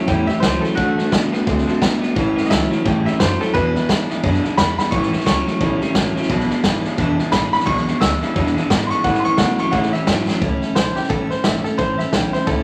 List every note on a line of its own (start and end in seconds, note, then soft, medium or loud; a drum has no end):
0.07 0.28 E2 medium
0.07 0.29 A2 medium
0.07 0.27 A2 medium
0.07 0.29 E3 medium
0.07 0.27 G3 medium
0.07 0.29 A3 medium
0.07 0.28 C#4 medium
0.07 0.26 E4 medium
0.07 0.28 G5 medium
0.07 kick loud
0.07 snare soft
0.27 0.42 A2 medium
0.27 0.42 G3 medium
0.27 0.42 A3 soft
0.27 0.43 C#4 soft
0.27 0.42 E4 medium
0.27 0.42 E5 loud
0.27 muted upright bass stroke medium
0.27 snare soft
0.40 0.63 C#2 medium
0.40 0.62 A2 medium
0.40 0.64 E3 medium
0.40 0.62 F#3 loud
0.40 0.64 A3 medium
0.40 0.62 C5 loud
0.40 kick medium
0.40 snare loud
0.40 hi-hat pedal medium
0.44 0.63 C#4 medium
0.44 0.62 E4 medium
0.61 0.76 A2 medium
0.61 0.77 F#3 medium
0.61 0.78 C#4 medium
0.61 0.78 E4 medium
0.61 0.76 A4 medium
0.61 snare soft
0.66 0.77 A3 medium
0.75 0.98 D3 medium
0.75 0.96 D3 medium
0.75 0.96 A3 loud
0.75 0.99 A3 medium
0.75 0.98 D4 medium
0.75 1.10 F#4 loud
0.75 kick loud
0.75 snare soft
0.80 0.97 F#4 medium
0.98 1.10 D3 medium
0.98 1.11 A3 medium
0.98 1.12 A3 medium
0.98 1.13 D4 medium
0.98 1.12 F#4 medium
0.98 muted upright bass stroke soft
0.98 snare soft
1.12 1.32 A1 loud
1.12 1.31 D3 medium
1.12 1.33 D3 medium
1.12 1.34 A3 medium
1.12 1.31 B3 medium
1.12 1.33 D4 medium
1.12 1.32 F#4 medium
1.12 kick medium
1.12 snare loud
1.12 hi-hat pedal medium
1.32 1.45 D3 medium
1.32 1.47 A3 medium
1.32 1.45 B3 medium
1.32 1.47 D4 medium
1.32 1.47 F#4 medium
1.32 muted upright bass stroke soft
1.32 snare soft
1.46 1.67 C#2 medium
1.46 1.65 D3 medium
1.46 1.68 D3 medium
1.46 1.68 A3 medium
1.46 1.65 C4 medium
1.46 1.68 D4 loud
1.46 1.67 F#4 medium
1.46 kick loud
1.46 snare soft
1.58 snare soft
1.67 1.80 D3 medium
1.67 1.81 A3 medium
1.67 1.80 C4 medium
1.67 1.82 D4 medium
1.67 1.82 F#4 medium
1.67 snare soft
1.81 2.01 B1 medium
1.81 2.00 D3 medium
1.81 2.02 D3 medium
1.81 2.02 A3 medium
1.81 2.00 B3 loud
1.81 2.02 D4 medium
1.81 2.00 F#4 medium
1.81 kick medium
1.81 snare loud
1.81 hi-hat pedal medium
2.02 2.14 D3 medium
2.02 2.15 A3 medium
2.02 2.15 B3 medium
2.02 2.16 D4 medium
2.02 2.16 F#4 medium
2.02 muted upright bass stroke soft
2.02 snare soft
2.15 2.36 A1 medium
2.15 2.34 A2 loud
2.15 2.36 A2 medium
2.15 2.37 E3 medium
2.15 2.34 E3 loud
2.15 2.37 A3 medium
2.15 2.37 C#4 loud
2.15 2.35 E4 medium
2.15 kick loud
2.15 snare soft
2.36 2.49 A2 medium
2.36 2.49 E3 medium
2.36 2.51 A3 medium
2.36 2.51 C#4 medium
2.36 2.50 E4 medium
2.36 muted upright bass stroke medium
2.36 snare soft
2.44 2.49 D#5 medium
2.44 snare soft
2.50 2.71 C#2 loud
2.50 2.69 A2 medium
2.50 2.71 E3 medium
2.50 2.69 F#3 loud
2.50 2.72 A3 medium
2.50 2.71 C#4 medium
2.50 2.70 E4 medium
2.50 2.84 E5 loud
2.50 kick medium
2.50 snare loud
2.50 hi-hat pedal medium
2.71 2.83 A2 medium
2.71 2.84 F#3 loud
2.71 2.85 A3 soft
2.71 2.86 C#4 medium
2.71 2.85 E4 medium
2.71 muted upright bass stroke medium
2.71 snare soft
2.85 3.05 G#2 medium
2.85 3.04 A2 medium
2.85 3.06 A2 medium
2.85 3.06 E3 medium
2.85 3.04 G3 medium
2.85 3.07 A3 medium
2.85 3.06 C#4 medium
2.85 3.05 E4 medium
2.85 3.06 G5 medium
2.85 kick loud
2.85 snare soft
3.05 3.18 A2 medium
3.05 3.18 G3 medium
3.05 3.20 A3 soft
3.05 3.21 C#4 medium
3.05 3.20 E4 medium
3.05 3.19 E5 loud
3.05 muted upright bass stroke medium
3.05 snare soft
3.19 3.40 F#2 medium
3.19 3.38 A2 medium
3.19 3.41 E3 medium
3.19 3.38 F#3 loud
3.19 3.41 A3 medium
3.19 3.42 C#4 medium
3.19 3.40 E4 medium
3.19 3.40 C5 loud
3.19 kick medium
3.19 snare loud
3.19 hi-hat pedal medium
3.40 3.53 A2 medium
3.40 3.53 F#3 medium
3.40 3.56 C#4 medium
3.40 3.55 E4 medium
3.40 3.54 A4 loud
3.40 snare soft
3.44 3.56 A3 soft
3.54 3.73 E2 medium
3.54 3.75 E2 medium
3.54 3.73 B2 loud
3.54 3.75 B2 medium
3.54 3.76 E3 medium
3.54 3.76 G#3 medium
3.54 3.75 D4 medium
3.54 3.75 E4 medium
3.54 3.87 B4 loud
3.54 kick loud
3.54 snare soft
3.75 3.87 E2 medium
3.75 3.87 B2 medium
3.75 3.87 E3 medium
3.75 3.88 G#3 medium
3.75 3.90 D4 medium
3.75 3.89 E4 medium
3.75 muted upright bass stroke medium
3.75 snare soft
3.89 4.07 E2 medium
3.89 4.08 C#3 loud
3.89 4.09 E3 medium
3.89 4.10 G#3 medium
3.89 4.10 D4 medium
3.89 4.09 E4 medium
3.89 kick medium
3.89 snare loud
3.89 hi-hat pedal medium
4.09 4.22 E2 medium
4.09 4.22 C#3 medium
4.09 4.23 E3 medium
4.09 4.23 G#3 medium
4.09 4.24 D4 medium
4.09 4.23 E4 medium
4.09 muted upright bass stroke soft
4.09 snare soft
4.23 4.42 E2 medium
4.23 4.44 E2 medium
4.23 4.43 F#2 medium
4.23 4.44 B2 loud
4.23 4.42 D3 loud
4.23 4.44 E3 medium
4.23 4.45 G#3 loud
4.23 4.44 D4 loud
4.23 4.42 E4 loud
4.23 kick loud
4.23 snare soft
4.34 snare soft
4.44 4.56 E2 medium
4.44 4.56 D3 medium
4.44 4.56 E3 medium
4.44 4.57 G#3 medium
4.44 4.58 D4 medium
4.44 4.58 E4 medium
4.44 muted upright bass stroke medium
4.44 snare soft
4.57 4.76 E2 medium
4.57 4.78 E2 medium
4.57 4.76 C#3 medium
4.57 4.78 E3 medium
4.57 4.79 G#3 medium
4.57 4.78 D4 medium
4.57 4.77 E4 medium
4.57 4.77 B5 loud
4.57 kick medium
4.57 snare loud
4.57 hi-hat pedal medium
4.78 4.91 E2 medium
4.78 4.91 C#3 medium
4.78 4.92 E3 soft
4.78 4.93 G#3 soft
4.78 4.93 D4 medium
4.78 4.92 E4 medium
4.78 4.92 B5 loud
4.78 muted upright bass stroke medium
4.78 snare medium
4.91 5.12 A1 medium
4.91 5.11 A2 medium
4.91 5.13 A2 medium
4.91 5.11 E3 loud
4.91 5.13 E3 medium
4.91 5.13 A3 medium
4.91 5.13 C#4 medium
4.91 5.12 E4 loud
4.91 5.25 C#6 loud
4.91 kick loud
4.91 snare soft
5.03 snare soft
5.13 5.24 A2 medium
5.13 5.25 E3 medium
5.13 5.26 A3 soft
5.13 5.27 C#4 medium
5.13 5.27 E4 medium
5.13 muted upright bass stroke medium
5.13 snare soft
5.20 snare soft
5.25 5.47 C#2 medium
5.25 5.45 A2 medium
5.25 5.47 E3 medium
5.25 5.45 F#3 medium
5.25 5.48 A3 medium
5.25 5.47 C#4 medium
5.25 5.46 E4 medium
5.25 5.93 C#6 loud
5.25 kick medium
5.25 snare loud
5.25 hi-hat pedal medium
5.47 5.59 A2 medium
5.47 5.60 F#3 medium
5.47 5.61 A3 soft
5.47 5.61 C#4 medium
5.47 5.61 E4 medium
5.47 muted upright bass stroke medium
5.47 snare soft
5.60 5.81 B1 medium
5.60 5.79 A2 medium
5.60 5.82 A2 medium
5.60 5.82 E3 medium
5.60 5.80 G3 medium
5.60 5.82 A3 medium
5.60 5.82 C#4 medium
5.60 5.80 E4 medium
5.60 kick loud
5.60 snare soft
5.81 5.94 A2 medium
5.81 5.94 G3 medium
5.81 5.95 A3 medium
5.81 5.96 C#4 medium
5.81 5.95 E4 medium
5.81 muted upright bass stroke medium
5.81 snare soft
5.95 6.15 A1 medium
5.95 6.14 A2 medium
5.95 6.16 E3 medium
5.95 6.14 F#3 medium
5.95 6.16 A3 medium
5.95 6.16 C#4 medium
5.95 6.14 E4 medium
5.95 kick medium
5.95 snare loud
5.95 hi-hat pedal medium
6.15 6.28 A2 medium
6.15 6.28 F#3 medium
6.15 6.30 A3 soft
6.15 6.30 C#4 medium
6.15 6.30 E4 medium
6.15 muted upright bass stroke medium
6.15 snare soft
6.23 snare soft
6.29 6.50 B1 medium
6.29 6.50 E2 medium
6.29 6.48 E2 medium
6.29 6.50 B2 medium
6.29 6.49 B2 loud
6.29 6.51 E3 loud
6.29 6.50 G#3 medium
6.29 6.49 D4 loud
6.29 6.48 E4 loud
6.29 kick loud
6.29 snare soft
6.40 snare soft
6.50 6.63 E2 medium
6.50 6.63 B2 medium
6.50 6.62 E3 medium
6.50 6.63 G#3 medium
6.50 6.64 D4 medium
6.50 6.64 E4 medium
6.50 muted upright bass stroke medium
6.50 snare soft
6.63 6.84 G#1 loud
6.63 6.83 E2 loud
6.63 6.83 C#3 loud
6.63 6.84 E3 medium
6.63 6.84 G#3 medium
6.63 6.83 D4 medium
6.63 6.82 E4 medium
6.63 kick medium
6.63 snare loud
6.63 hi-hat pedal medium
6.83 6.97 E2 medium
6.83 6.97 C#3 medium
6.83 6.97 E3 medium
6.83 6.98 G#3 medium
6.83 6.98 D4 medium
6.83 6.98 E4 medium
6.83 muted upright bass stroke medium
6.83 snare soft
6.97 7.18 E1 medium
6.97 7.19 E2 loud
6.97 7.17 E2 medium
6.97 7.19 B2 medium
6.97 7.17 D3 loud
6.97 7.19 E3 loud
6.97 7.19 G#3 loud
6.97 7.18 D4 loud
6.97 7.17 E4 loud
6.97 kick loud
6.97 snare soft
7.18 7.32 E2 medium
7.18 7.32 D3 medium
7.18 7.30 E3 medium
7.18 7.31 G#3 medium
7.18 7.32 D4 medium
7.18 7.32 E4 medium
7.18 muted upright bass stroke medium
7.18 snare soft
7.32 7.53 A1 medium
7.32 7.52 E2 medium
7.32 7.52 C#3 loud
7.32 7.53 E3 medium
7.32 7.53 G#3 medium
7.32 7.52 D4 medium
7.32 7.51 E4 medium
7.32 7.51 B5 loud
7.32 kick medium
7.32 snare loud
7.32 hi-hat pedal medium
7.52 7.66 E2 medium
7.52 7.66 C#3 medium
7.52 7.65 E3 soft
7.52 7.65 G#3 medium
7.52 7.66 D4 medium
7.52 7.67 E4 medium
7.52 7.67 B5 loud
7.52 muted upright bass stroke medium
7.52 snare soft
7.60 snare soft
7.65 7.87 B1 loud
7.65 7.87 E2 medium
7.65 7.86 E2 medium
7.65 7.87 B2 medium
7.65 7.86 B2 loud
7.65 7.87 E3 medium
7.65 7.87 G#3 loud
7.65 7.87 D4 medium
7.65 7.85 E4 medium
7.65 8.00 C#6 loud
7.65 kick loud
7.65 snare soft
7.77 snare soft
7.87 8.00 E2 medium
7.87 8.01 B2 medium
7.87 8.00 E3 soft
7.87 8.01 G#3 medium
7.87 8.02 D4 medium
7.87 8.01 E4 medium
7.87 muted upright bass stroke medium
7.87 snare soft
8.01 8.21 D2 loud
8.01 8.20 E2 medium
8.01 8.20 C#3 loud
8.01 8.22 E3 medium
8.01 8.22 G#3 medium
8.01 8.21 D4 medium
8.01 8.21 E4 medium
8.01 8.68 E6 loud
8.01 kick medium
8.01 snare loud
8.01 hi-hat pedal medium
8.22 8.34 E2 medium
8.22 8.35 C#3 loud
8.22 8.36 E3 soft
8.22 8.36 G#3 medium
8.22 8.36 D4 soft
8.22 8.36 E4 medium
8.22 snare soft
8.36 8.56 E2 loud
8.36 8.56 E2 medium
8.36 8.55 E2 medium
8.36 8.57 B2 medium
8.36 8.55 D3 loud
8.36 8.57 E3 medium
8.36 8.57 G#3 loud
8.36 8.57 D4 loud
8.36 8.56 E4 medium
8.36 kick loud
8.36 snare soft
8.46 snare soft
8.56 8.69 E2 medium
8.56 8.69 D3 medium
8.56 8.69 E3 soft
8.56 8.70 G#3 medium
8.56 8.71 D4 medium
8.56 8.70 E4 medium
8.56 muted upright bass stroke medium
8.56 snare soft
8.70 8.89 E2 medium
8.70 8.90 G#2 medium
8.70 8.89 C#3 loud
8.70 8.91 E3 medium
8.70 8.91 G#3 medium
8.70 8.91 D4 medium
8.70 8.90 E4 medium
8.70 kick medium
8.70 snare loud
8.70 hi-hat pedal medium
8.87 8.89 C6 medium
8.87 9.04 C#6 loud
8.87 snare soft
8.91 9.03 E2 medium
8.91 9.04 C#3 medium
8.91 9.04 E3 soft
8.91 9.05 G#3 medium
8.91 9.05 D4 medium
8.91 9.05 E4 medium
8.91 muted upright bass stroke medium
9.04 9.24 A2 medium
9.04 9.25 A2 medium
9.04 9.23 A2 loud
9.04 9.25 E3 medium
9.04 9.23 E3 loud
9.04 9.26 A3 medium
9.04 9.25 C#4 medium
9.04 9.23 E4 medium
9.04 9.24 F#5 loud
9.04 kick loud
9.04 snare soft
9.14 snare soft
9.20 9.22 C6 medium
9.24 9.37 A2 medium
9.24 9.38 E3 medium
9.24 9.37 A3 soft
9.24 9.38 C#4 medium
9.24 9.38 E4 medium
9.24 9.38 C#6 loud
9.24 muted upright bass stroke medium
9.24 snare soft
9.37 9.57 A2 medium
9.37 9.58 B2 loud
9.37 9.59 E3 medium
9.37 9.58 F#3 medium
9.37 9.59 A3 medium
9.37 9.59 C#4 medium
9.37 9.57 E4 medium
9.37 9.58 F#5 loud
9.37 kick medium
9.37 snare loud
9.37 hi-hat pedal medium
9.58 9.72 A2 medium
9.58 9.72 F#3 medium
9.58 9.72 A3 soft
9.58 9.72 C#4 medium
9.58 9.73 E4 medium
9.58 9.73 C#6 loud
9.58 muted upright bass stroke medium
9.58 snare soft
9.71 9.93 A2 medium
9.71 9.92 A2 medium
9.71 9.93 C#3 medium
9.71 9.93 E3 medium
9.71 9.92 G3 loud
9.71 9.94 A3 medium
9.71 9.94 C#4 medium
9.71 9.92 E4 loud
9.71 9.92 F#5 loud
9.71 kick loud
9.71 snare soft
9.83 snare soft
9.93 10.06 A2 medium
9.93 10.07 G3 medium
9.93 10.07 A3 soft
9.93 10.08 C#4 medium
9.93 10.07 E4 medium
9.93 10.40 E5 loud
9.93 muted upright bass stroke medium
9.93 snare soft
10.07 10.27 G#2 medium
10.07 10.26 A2 medium
10.07 10.27 E3 medium
10.07 10.26 F#3 medium
10.07 10.28 A3 medium
10.07 10.28 C#4 medium
10.07 10.27 E4 medium
10.07 kick medium
10.07 snare loud
10.07 hi-hat pedal medium
10.28 10.40 A2 medium
10.28 10.41 F#3 medium
10.28 10.41 A3 soft
10.28 10.42 C#4 medium
10.28 10.42 E4 medium
10.28 muted upright bass stroke medium
10.28 snare medium
10.41 10.61 C#2 medium
10.41 10.62 A2 medium
10.41 10.62 E3 medium
10.41 10.62 A3 medium
10.41 10.62 C#4 medium
10.41 10.60 E4 medium
10.41 kick loud
10.41 snare soft
10.61 10.75 A3 medium
10.61 10.76 C#4 medium
10.61 10.76 E4 medium
10.61 muted upright bass stroke medium
10.61 snare soft
10.75 10.96 B1 medium
10.75 10.96 E3 medium
10.75 10.97 A3 medium
10.75 10.96 C#4 medium
10.75 10.94 E4 medium
10.75 10.95 C5 loud
10.75 snare loud
10.75 hi-hat pedal medium
10.95 11.08 A3 soft
10.95 11.09 C#4 soft
10.95 11.09 E4 medium
10.95 11.09 G4 medium
10.95 muted upright bass stroke medium
10.95 snare soft
11.03 snare soft
11.09 11.30 A1 medium
11.09 11.30 A2 medium
11.09 11.30 E3 medium
11.09 11.30 A3 medium
11.09 11.29 C#4 medium
11.09 11.28 E4 medium
11.09 11.30 A4 loud
11.09 kick loud
11.09 snare soft
11.29 11.43 A3 soft
11.29 11.44 C#4 soft
11.29 11.44 E4 medium
11.29 11.44 C5 medium
11.29 muted upright bass stroke medium
11.29 snare soft
11.43 11.65 G#1 medium
11.43 11.64 E3 medium
11.43 11.65 A3 medium
11.43 11.64 C#4 medium
11.43 11.62 E4 medium
11.43 11.64 E5 medium
11.43 snare loud
11.43 hi-hat pedal medium
11.63 11.77 A3 soft
11.63 11.78 C#4 medium
11.63 11.78 E4 medium
11.63 11.78 A4 medium
11.63 muted upright bass stroke medium
11.63 snare soft
11.77 11.98 A1 medium
11.77 11.98 A2 medium
11.77 11.99 E3 medium
11.77 11.99 A3 medium
11.77 11.98 C#4 medium
11.77 11.96 E4 medium
11.77 11.98 C5 loud
11.77 kick loud
11.77 snare soft
11.98 12.11 A3 soft
11.98 12.12 C#4 medium
11.98 12.12 E4 medium
11.98 12.12 E5 medium
11.98 muted upright bass stroke medium
11.98 snare soft
12.11 12.32 B1 loud
12.11 12.33 E3 medium
12.11 12.33 A3 medium
12.11 12.33 C#4 medium
12.11 12.31 E4 medium
12.11 12.33 G5 medium
12.11 snare loud
12.11 hi-hat pedal medium
12.32 12.46 A3 medium
12.32 12.47 C#4 medium
12.32 12.47 E4 medium
12.32 12.47 C5 medium
12.32 muted upright bass stroke medium
12.32 snare soft
12.47 12.63 C#2 medium
12.47 12.63 A2 medium
12.47 12.63 E3 medium
12.47 12.63 A3 medium
12.47 12.63 C#4 medium
12.47 12.63 E4 loud
12.47 12.63 A4 loud
12.47 kick loud
12.47 snare soft